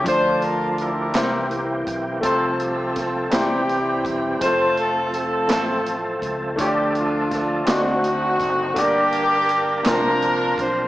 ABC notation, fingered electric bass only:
X:1
M:6/8
L:1/8
Q:3/8=55
K:F
V:1 name="Fingered electric bass" clef=bass
D,,3 C,,2 =B,,, | C,,3 C,,2 E,,, | F,,,3 A,,,2 _D,, | D,,3 D,,2 ^F,,, |
G,,,3 C,,2 =B,,, |]